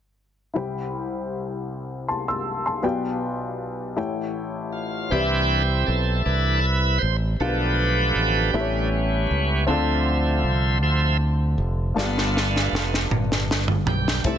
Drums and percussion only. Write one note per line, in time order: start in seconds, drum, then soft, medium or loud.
11.98 snare soft
12.18 snare soft
12.37 snare soft
12.56 snare soft
12.75 snare medium
12.94 snare soft
13.11 mid tom medium
13.32 snare medium
13.51 snare medium
13.68 floor tom medium
13.87 floor tom medium
14.08 snare medium
14.24 kick medium
14.24 closed hi-hat medium